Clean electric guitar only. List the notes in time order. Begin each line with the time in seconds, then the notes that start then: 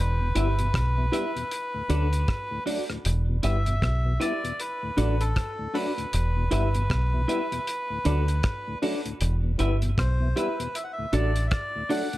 0.35 E4 G4 B4 E5
1.12 E4 G4 B4 E5
1.89 D4 F#4 A4 D5
2.66 D4 F#4 A4 D5
3.43 E4 G4 B4 E5
4.20 E4 G4 B4 E5
4.97 D4 F#4 A4 D5
5.74 D4 F#4 A4 D5
6.51 E4 G4 B4 E5
7.28 E4 G4 B4 E5
8.05 D4 F#4 A4 D5
8.82 D4 F#4 A4 D5
9.59 E4 G4 B4 E5
10.36 E4 G4 B4 E5
11.13 D4 F#4 A4 D5
11.89 D4 F#4 A4 D5